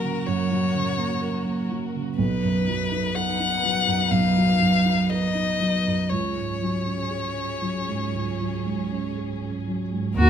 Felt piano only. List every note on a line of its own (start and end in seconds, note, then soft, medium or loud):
0.00 0.23 F#2 soft
0.00 0.03 C#3 soft
0.00 0.41 C#3 soft
0.00 0.51 F#3 soft
0.00 0.98 A#3 soft
0.00 1.22 A#4 soft
0.27 2.14 F#2 soft
0.51 0.89 F#3 soft
0.75 1.12 C#3 soft
0.98 1.36 A#3 soft
1.22 1.60 A#4 soft
1.46 1.84 A#3 soft
1.70 2.09 F#3 soft
1.95 2.19 C#3 soft
2.18 4.09 B1 medium
2.42 2.82 F#2 soft
2.67 3.07 F#3 soft
2.92 3.31 D#4 soft
3.16 3.55 B4 soft
3.40 3.79 D#4 soft
3.63 4.03 F#3 soft
3.87 4.27 F#2 soft
4.11 6.06 B1 soft
4.37 4.76 F#3 soft
4.61 5.00 F#2 soft
4.85 5.25 D#4 soft
5.11 5.50 B4 soft
5.35 5.75 D#4 soft
5.60 6.01 F#3 soft
5.86 6.11 F#2 soft
6.11 8.11 C#2 medium
6.36 6.77 G#2 soft
6.61 7.02 F#3 soft
6.86 7.27 C#4 soft
7.11 7.52 G#4 soft
7.37 7.78 C#4 soft
7.62 8.03 F#3 soft
7.88 8.29 G#2 soft
8.14 10.13 C#2 soft
8.41 8.81 F#3 soft
8.66 9.06 G#2 soft
8.91 9.31 C#4 soft
9.17 9.57 G#4 soft
9.42 9.82 C#4 soft
9.68 10.08 F#3 soft
9.93 10.17 G#2 soft
10.19 10.30 D#2 medium